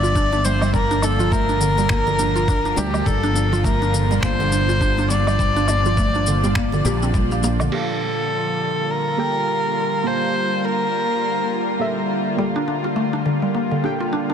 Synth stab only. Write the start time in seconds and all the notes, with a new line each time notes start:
7.70 A#3 G4 A4
7.75 F5
9.17 A#3 G4 A4 G5
10.04 A#3 G4 A5
10.08 F5
11.79 A#3 G4 A4 E5
12.36 A#3 G4 A4
12.41 F5
13.83 A#3 G4 A4 G5